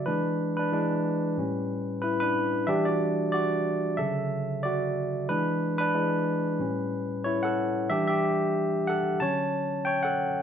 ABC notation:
X:1
M:4/4
L:1/16
Q:"Swing 16ths" 1/4=92
K:Edor
V:1 name="Tine electric piano"
B3 [DB]8 z [EB] [DB]3 | [Ge] [Fd]3 [Fd]4 [Ae]4 [Fd]4 | B3 [DB]8 z [Ec] [Af]3 | [Ge] [Ge]4- [Ge] [Af]2 [ca]4 [cg] [Af]3 |]
V:2 name="Tine electric piano" clef=bass
[E,^G,D]2 z2 [E,G,D]4 [A,,=G,C]6 z2 | [E,G,D]6 z2 [C,D,F,]6 z2 | [E,^G,D]4 [E,G,D]4 [A,,=G,C]2 z6 | [E,G,D]6 z2 [D,F,C]2 z6 |]